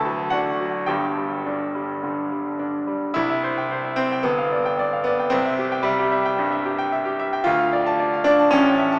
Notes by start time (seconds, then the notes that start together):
Already playing: D2 A4 A5
0.05 F#3
0.30 D4 F#4 F#5
0.60 F#3
0.86 G1 G2 G4 G5
1.17 G3
1.46 D4
1.75 G3
2.03 D3
2.32 G3
2.59 D4
2.87 G3
3.14 C2 E4
3.30 E5
3.44 C5
3.58 G5
3.71 C5
3.85 E5
3.96 C4 C5
4.12 G5
4.23 G1 B3
4.38 F5
4.52 D5
4.66 G5
4.79 D5
4.93 F5
5.04 B3 D5
5.20 G5
5.30 C2 C4
5.45 E5
5.58 G4
5.72 G5
5.83 G3 E5
5.99 G4
6.12 E5
6.25 G5
6.39 G2
6.52 E5
6.65 G4
6.79 G5
6.92 E5
7.05 G4
7.19 E5
7.33 G5
7.44 D2 F4
7.60 F5
7.73 D5
7.86 A5
8.00 D5
8.13 F5
8.24 D4 D5
8.39 A5
8.51 A1 C#4
8.66 G5
8.78 E5
8.92 A5